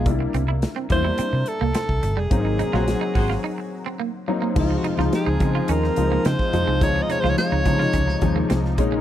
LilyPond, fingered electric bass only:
\new Staff \with { instrumentName = "Fingered electric bass" } { \clef bass \time 4/4 \key des \major \tempo 4 = 107 c,8 c,8. r16 e,8 r16 c16 r16 c,16 r16 c,16 g,,16 f,,16 | aes,,8. bes,,8 r16 aes,,8 r2 | des,8 r16 des,16 r16 des,16 des8 ees,8 des,8 des16 r16 f,16 c,16 | des,8 r16 des,16 r16 des,16 des8 des,8 ees,8 c,8 bes,,8 | }